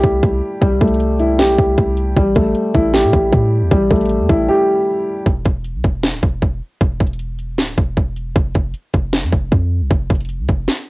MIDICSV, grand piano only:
0, 0, Header, 1, 2, 480
1, 0, Start_track
1, 0, Tempo, 387097
1, 764, Time_signature, 4, 2, 24, 8
1, 13511, End_track
2, 0, Start_track
2, 0, Title_t, "Grand piano"
2, 0, Program_c, 0, 0
2, 0, Control_c, 0, 64, 127
2, 0, Note_on_c, 0, 55, 97
2, 0, Note_on_c, 0, 57, 78
2, 0, Note_on_c, 0, 64, 82
2, 0, Note_on_c, 0, 67, 100
2, 286, Note_off_c, 0, 57, 0
2, 760, Note_off_c, 0, 55, 0
2, 760, Note_on_c, 0, 55, 93
2, 763, Note_off_c, 0, 64, 0
2, 1006, Note_off_c, 0, 67, 0
2, 1009, Note_on_c, 0, 57, 84
2, 1484, Note_on_c, 0, 64, 91
2, 1728, Note_on_c, 0, 67, 101
2, 1962, Note_off_c, 0, 55, 0
2, 2206, Note_off_c, 0, 57, 0
2, 2684, Note_off_c, 0, 64, 0
2, 2685, Note_on_c, 0, 55, 94
2, 2686, Note_off_c, 0, 67, 0
2, 2699, Control_c, 0, 64, 0
2, 2924, Note_on_c, 0, 57, 82
2, 2940, Control_c, 0, 64, 127
2, 3403, Note_on_c, 0, 64, 93
2, 3642, Note_on_c, 0, 67, 102
2, 3884, Note_off_c, 0, 55, 0
2, 4124, Note_off_c, 0, 57, 0
2, 4603, Note_off_c, 0, 64, 0
2, 4606, Note_on_c, 0, 55, 101
2, 4843, Note_off_c, 0, 67, 0
2, 4845, Note_on_c, 0, 57, 82
2, 5322, Note_on_c, 0, 64, 87
2, 5563, Note_on_c, 0, 67, 101
2, 5805, Note_off_c, 0, 55, 0
2, 6044, Note_off_c, 0, 57, 0
2, 6523, Note_off_c, 0, 64, 0
2, 6524, Note_off_c, 0, 67, 0
2, 6538, Control_c, 0, 64, 0
2, 13511, End_track
0, 0, End_of_file